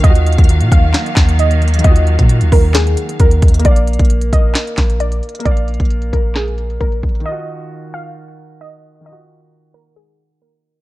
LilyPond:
<<
  \new Staff \with { instrumentName = "Synth pluck" } { \time 4/4 \key ees \minor \tempo 4 = 133 ees''4. f''4. ees''4 | ees''4. bes'8 aes'4 bes'4 | d''4. ees''4. d''4 | d''4. bes'8 aes'4 bes'4 |
ees''4. f''4. ees''4 | ees''4. bes'8 aes'4 bes'4 | }
  \new Staff \with { instrumentName = "Grand piano" } { \time 4/4 \key ees \minor <ees ees' f' ges'>1 | <ees ees' f' ges'>1 | <bes bes' f''>1 | <bes bes' d'' f''>1 |
<ees ees' f' ges'>1 | <ees ees' f' ges'>1 | }
  \new Staff \with { instrumentName = "String section" } { \clef bass \time 4/4 \key ees \minor <ees ges bes f''>1~ | <ees ges bes f''>1 | r1 | r1 |
r1 | r1 | }
  \new Staff \with { instrumentName = "808-style bass" } { \clef bass \time 4/4 \key ees \minor ees,8. ees,8 bes,16 ees,8 r8 ees,4. | ees,8. bes,8 d,16 ees,4 r8 ees,8 ees,8 | bes,,8. bes,,8. bes,,8 r8 bes,,4 r8 | bes,,8. bes,,8. bes,,4. bes,,8 bes,,8 |
r1 | r1 | }
  \new DrumStaff \with { instrumentName = "Drums" } \drummode { \time 4/4 <hh bd>16 hh16 hh32 hh32 <hh bd>32 hh32 hh16 hh16 <hh bd>8 <hc hh sn>16 hh16 <hc hh bd sn>16 hh16 hh16 hh16 hh32 hh32 hh32 hh32 | <hh bd>16 hh16 hh16 <hh bd>16 hh16 hh16 <hho bd>8 <hc hh sn>16 hh16 hh16 hh16 <hh bd>16 hh16 <hh bd>32 hh32 hh32 hh32 | <hh bd>16 hh16 hh32 hh32 <hh bd>32 hh32 hh16 hh16 <hh bd>8 <hc hh sn>16 hh16 <hc hh bd sn>16 hh16 hh16 hh16 hh32 hh32 hh32 hh32 | <hh bd>16 hh16 hh32 hh32 <hh bd>32 hh32 hh16 hh16 <hh bd>8 <hc hh sn>16 hh16 hh16 hh16 <hh bd>16 hh16 <hh bd>32 hh32 hh32 hh32 |
r4 r4 r4 r4 | r4 r4 r4 r4 | }
>>